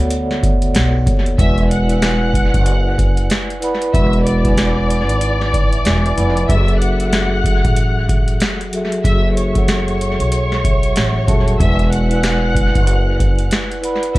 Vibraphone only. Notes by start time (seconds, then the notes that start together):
Already playing: B3 F#4 A4 C#5 D5 F#5
0.74 F#5
1.07 C#5
1.37 E4 B4 D5 F#5
1.41 G#5
1.88 E4 B4 D5 F#5
1.92 G#5
3.60 E4 B4 D5 F#5
3.64 B5
3.92 E4 B4 D5 F#5
3.96 B5
4.43 E4 B4 D5 F#5 G#5
5.53 D5
5.73 E5
5.86 G#5
6.16 E4 B4 D5 F#5 B5
6.20 G#5
6.48 F#3 F#4 G#4 A4
6.52 E5
6.97 F#3 F#4 G#4 A4
7.01 E5
8.71 F#3 F#4 G#4 A4
8.75 E5
9.03 F#3 F#4 G#4 A4 E5
9.54 F#3 F#4 G#4 A4
9.58 F#5
10.64 E5
10.96 F#5
11.26 F#3 F#4 G#4 A4 A5
11.30 E5
11.58 E4 B4 D5 F#5
12.09 E4 B4 D5 F#5
12.13 G#5
13.81 E4 B4 D5 F#5 B5
14.13 E4 B4 D5